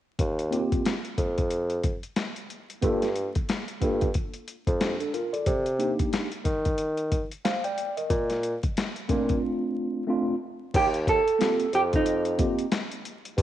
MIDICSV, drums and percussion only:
0, 0, Header, 1, 2, 480
1, 0, Start_track
1, 0, Tempo, 659341
1, 141, Time_signature, 4, 2, 24, 8
1, 9770, End_track
2, 0, Start_track
2, 0, Title_t, "Drums"
2, 138, Note_on_c, 9, 36, 86
2, 138, Note_on_c, 9, 42, 80
2, 211, Note_off_c, 9, 36, 0
2, 211, Note_off_c, 9, 42, 0
2, 283, Note_on_c, 9, 42, 49
2, 356, Note_off_c, 9, 42, 0
2, 382, Note_on_c, 9, 42, 64
2, 455, Note_off_c, 9, 42, 0
2, 525, Note_on_c, 9, 42, 46
2, 526, Note_on_c, 9, 36, 78
2, 598, Note_off_c, 9, 42, 0
2, 599, Note_off_c, 9, 36, 0
2, 623, Note_on_c, 9, 42, 80
2, 629, Note_on_c, 9, 38, 98
2, 695, Note_off_c, 9, 42, 0
2, 702, Note_off_c, 9, 38, 0
2, 763, Note_on_c, 9, 42, 43
2, 835, Note_off_c, 9, 42, 0
2, 858, Note_on_c, 9, 36, 74
2, 859, Note_on_c, 9, 42, 66
2, 931, Note_off_c, 9, 36, 0
2, 931, Note_off_c, 9, 42, 0
2, 1003, Note_on_c, 9, 42, 47
2, 1007, Note_on_c, 9, 36, 70
2, 1075, Note_off_c, 9, 42, 0
2, 1080, Note_off_c, 9, 36, 0
2, 1095, Note_on_c, 9, 42, 68
2, 1168, Note_off_c, 9, 42, 0
2, 1235, Note_on_c, 9, 42, 39
2, 1308, Note_off_c, 9, 42, 0
2, 1335, Note_on_c, 9, 42, 67
2, 1339, Note_on_c, 9, 36, 75
2, 1408, Note_off_c, 9, 42, 0
2, 1412, Note_off_c, 9, 36, 0
2, 1479, Note_on_c, 9, 42, 45
2, 1551, Note_off_c, 9, 42, 0
2, 1573, Note_on_c, 9, 42, 72
2, 1575, Note_on_c, 9, 38, 90
2, 1646, Note_off_c, 9, 42, 0
2, 1648, Note_off_c, 9, 38, 0
2, 1719, Note_on_c, 9, 42, 46
2, 1792, Note_off_c, 9, 42, 0
2, 1821, Note_on_c, 9, 42, 58
2, 1894, Note_off_c, 9, 42, 0
2, 1965, Note_on_c, 9, 42, 47
2, 2038, Note_off_c, 9, 42, 0
2, 2056, Note_on_c, 9, 42, 77
2, 2058, Note_on_c, 9, 36, 85
2, 2128, Note_off_c, 9, 42, 0
2, 2131, Note_off_c, 9, 36, 0
2, 2199, Note_on_c, 9, 42, 46
2, 2207, Note_on_c, 9, 38, 33
2, 2272, Note_off_c, 9, 42, 0
2, 2279, Note_off_c, 9, 38, 0
2, 2297, Note_on_c, 9, 42, 59
2, 2370, Note_off_c, 9, 42, 0
2, 2440, Note_on_c, 9, 42, 53
2, 2445, Note_on_c, 9, 36, 78
2, 2513, Note_off_c, 9, 42, 0
2, 2518, Note_off_c, 9, 36, 0
2, 2539, Note_on_c, 9, 42, 83
2, 2545, Note_on_c, 9, 38, 96
2, 2611, Note_off_c, 9, 42, 0
2, 2618, Note_off_c, 9, 38, 0
2, 2679, Note_on_c, 9, 42, 47
2, 2752, Note_off_c, 9, 42, 0
2, 2778, Note_on_c, 9, 36, 74
2, 2778, Note_on_c, 9, 42, 61
2, 2850, Note_off_c, 9, 36, 0
2, 2850, Note_off_c, 9, 42, 0
2, 2921, Note_on_c, 9, 42, 44
2, 2927, Note_on_c, 9, 36, 77
2, 2994, Note_off_c, 9, 42, 0
2, 3000, Note_off_c, 9, 36, 0
2, 3015, Note_on_c, 9, 42, 72
2, 3023, Note_on_c, 9, 36, 77
2, 3088, Note_off_c, 9, 42, 0
2, 3095, Note_off_c, 9, 36, 0
2, 3157, Note_on_c, 9, 42, 40
2, 3229, Note_off_c, 9, 42, 0
2, 3260, Note_on_c, 9, 42, 71
2, 3333, Note_off_c, 9, 42, 0
2, 3401, Note_on_c, 9, 36, 78
2, 3402, Note_on_c, 9, 42, 46
2, 3474, Note_off_c, 9, 36, 0
2, 3475, Note_off_c, 9, 42, 0
2, 3500, Note_on_c, 9, 42, 73
2, 3502, Note_on_c, 9, 38, 100
2, 3572, Note_off_c, 9, 42, 0
2, 3574, Note_off_c, 9, 38, 0
2, 3642, Note_on_c, 9, 42, 50
2, 3715, Note_off_c, 9, 42, 0
2, 3742, Note_on_c, 9, 42, 64
2, 3814, Note_off_c, 9, 42, 0
2, 3885, Note_on_c, 9, 42, 48
2, 3958, Note_off_c, 9, 42, 0
2, 3976, Note_on_c, 9, 42, 79
2, 3978, Note_on_c, 9, 36, 87
2, 4049, Note_off_c, 9, 42, 0
2, 4051, Note_off_c, 9, 36, 0
2, 4120, Note_on_c, 9, 42, 49
2, 4193, Note_off_c, 9, 42, 0
2, 4220, Note_on_c, 9, 42, 63
2, 4293, Note_off_c, 9, 42, 0
2, 4363, Note_on_c, 9, 42, 52
2, 4366, Note_on_c, 9, 36, 72
2, 4436, Note_off_c, 9, 42, 0
2, 4439, Note_off_c, 9, 36, 0
2, 4461, Note_on_c, 9, 42, 85
2, 4468, Note_on_c, 9, 38, 95
2, 4534, Note_off_c, 9, 42, 0
2, 4540, Note_off_c, 9, 38, 0
2, 4599, Note_on_c, 9, 42, 49
2, 4672, Note_off_c, 9, 42, 0
2, 4697, Note_on_c, 9, 42, 64
2, 4698, Note_on_c, 9, 36, 75
2, 4769, Note_off_c, 9, 42, 0
2, 4771, Note_off_c, 9, 36, 0
2, 4843, Note_on_c, 9, 42, 49
2, 4847, Note_on_c, 9, 36, 76
2, 4915, Note_off_c, 9, 42, 0
2, 4920, Note_off_c, 9, 36, 0
2, 4935, Note_on_c, 9, 42, 69
2, 5008, Note_off_c, 9, 42, 0
2, 5077, Note_on_c, 9, 42, 42
2, 5149, Note_off_c, 9, 42, 0
2, 5181, Note_on_c, 9, 42, 71
2, 5182, Note_on_c, 9, 36, 73
2, 5253, Note_off_c, 9, 42, 0
2, 5254, Note_off_c, 9, 36, 0
2, 5325, Note_on_c, 9, 42, 45
2, 5398, Note_off_c, 9, 42, 0
2, 5423, Note_on_c, 9, 42, 77
2, 5425, Note_on_c, 9, 38, 96
2, 5496, Note_off_c, 9, 42, 0
2, 5498, Note_off_c, 9, 38, 0
2, 5563, Note_on_c, 9, 42, 51
2, 5636, Note_off_c, 9, 42, 0
2, 5662, Note_on_c, 9, 42, 62
2, 5735, Note_off_c, 9, 42, 0
2, 5805, Note_on_c, 9, 42, 48
2, 5878, Note_off_c, 9, 42, 0
2, 5898, Note_on_c, 9, 36, 85
2, 5898, Note_on_c, 9, 42, 74
2, 5971, Note_off_c, 9, 36, 0
2, 5971, Note_off_c, 9, 42, 0
2, 6040, Note_on_c, 9, 42, 49
2, 6048, Note_on_c, 9, 38, 31
2, 6113, Note_off_c, 9, 42, 0
2, 6121, Note_off_c, 9, 38, 0
2, 6139, Note_on_c, 9, 42, 61
2, 6212, Note_off_c, 9, 42, 0
2, 6284, Note_on_c, 9, 42, 50
2, 6287, Note_on_c, 9, 36, 75
2, 6356, Note_off_c, 9, 42, 0
2, 6359, Note_off_c, 9, 36, 0
2, 6384, Note_on_c, 9, 42, 81
2, 6390, Note_on_c, 9, 38, 96
2, 6457, Note_off_c, 9, 42, 0
2, 6463, Note_off_c, 9, 38, 0
2, 6523, Note_on_c, 9, 42, 47
2, 6595, Note_off_c, 9, 42, 0
2, 6618, Note_on_c, 9, 42, 67
2, 6619, Note_on_c, 9, 36, 74
2, 6691, Note_off_c, 9, 42, 0
2, 6692, Note_off_c, 9, 36, 0
2, 6763, Note_on_c, 9, 42, 42
2, 6768, Note_on_c, 9, 36, 72
2, 6836, Note_off_c, 9, 42, 0
2, 6841, Note_off_c, 9, 36, 0
2, 7820, Note_on_c, 9, 49, 81
2, 7821, Note_on_c, 9, 36, 90
2, 7821, Note_on_c, 9, 42, 86
2, 7893, Note_off_c, 9, 49, 0
2, 7894, Note_off_c, 9, 36, 0
2, 7894, Note_off_c, 9, 42, 0
2, 7964, Note_on_c, 9, 42, 51
2, 8037, Note_off_c, 9, 42, 0
2, 8061, Note_on_c, 9, 36, 87
2, 8064, Note_on_c, 9, 42, 67
2, 8134, Note_off_c, 9, 36, 0
2, 8137, Note_off_c, 9, 42, 0
2, 8209, Note_on_c, 9, 42, 51
2, 8282, Note_off_c, 9, 42, 0
2, 8305, Note_on_c, 9, 42, 84
2, 8311, Note_on_c, 9, 38, 100
2, 8377, Note_off_c, 9, 42, 0
2, 8384, Note_off_c, 9, 38, 0
2, 8443, Note_on_c, 9, 42, 48
2, 8515, Note_off_c, 9, 42, 0
2, 8541, Note_on_c, 9, 42, 62
2, 8614, Note_off_c, 9, 42, 0
2, 8685, Note_on_c, 9, 42, 49
2, 8690, Note_on_c, 9, 36, 78
2, 8758, Note_off_c, 9, 42, 0
2, 8762, Note_off_c, 9, 36, 0
2, 8779, Note_on_c, 9, 42, 78
2, 8852, Note_off_c, 9, 42, 0
2, 8919, Note_on_c, 9, 42, 43
2, 8992, Note_off_c, 9, 42, 0
2, 9018, Note_on_c, 9, 42, 80
2, 9022, Note_on_c, 9, 36, 80
2, 9091, Note_off_c, 9, 42, 0
2, 9094, Note_off_c, 9, 36, 0
2, 9162, Note_on_c, 9, 42, 47
2, 9235, Note_off_c, 9, 42, 0
2, 9257, Note_on_c, 9, 42, 79
2, 9259, Note_on_c, 9, 38, 100
2, 9330, Note_off_c, 9, 42, 0
2, 9332, Note_off_c, 9, 38, 0
2, 9402, Note_on_c, 9, 42, 53
2, 9475, Note_off_c, 9, 42, 0
2, 9502, Note_on_c, 9, 42, 67
2, 9575, Note_off_c, 9, 42, 0
2, 9648, Note_on_c, 9, 42, 52
2, 9721, Note_off_c, 9, 42, 0
2, 9740, Note_on_c, 9, 36, 89
2, 9742, Note_on_c, 9, 42, 85
2, 9770, Note_off_c, 9, 36, 0
2, 9770, Note_off_c, 9, 42, 0
2, 9770, End_track
0, 0, End_of_file